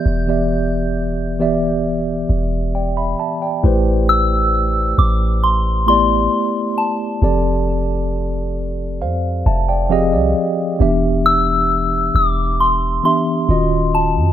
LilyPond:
<<
  \new Staff \with { instrumentName = "Synth bell" } { \time 4/4 \key a \minor \tempo 4 = 67 g'''4. r2 r8 | r8 e'''4 d'''8 c'''8 c'''4 a''8~ | a''8 r2. r8 | r8 e'''4 d'''8 c'''8 c'''4 a''8 | }
  \new Staff \with { instrumentName = "Tine electric piano" } { \time 4/4 \key a \minor << { r2. <d'' g''>16 <e'' b''>16 <e'' a''>16 <d'' g''>16~ | <d'' g''>16 r2. r8. | r2 <c'' f''>8 <e'' a''>16 <d'' g''>16 f''16 d''8. | r1 | } \\ { <e b g' d'' e''>16 <e b g' d'' e''>4~ <e b g' d'' e''>16 <e b g' d'' e''>4.~ <e b g' d'' e''>16 r8. | <a e' g' b' c''>4.~ <a e' g' b' c''>16 r8. <a b e' g' d''>4. | <f c' g' a' d''>4.~ <f c' g' a' d''>16 r4 r16 <f c' g' aes' ees''>4 | <e b d' g' e''>4.~ <e b d' g' e''>16 r8. <e b d' g' e''>8 <dis cis' f' fis' dis''>4 | } >> }
  \new Staff \with { instrumentName = "808-style bass" } { \clef bass \time 4/4 \key a \minor e,,2~ e,,8 e,,4 r8 | a,,4. a,,4. r4 | f,,2 f,8 f,,8. c,16 r8 | e,,4. e,,4 r8 dis,,8. fis,16 | }
>>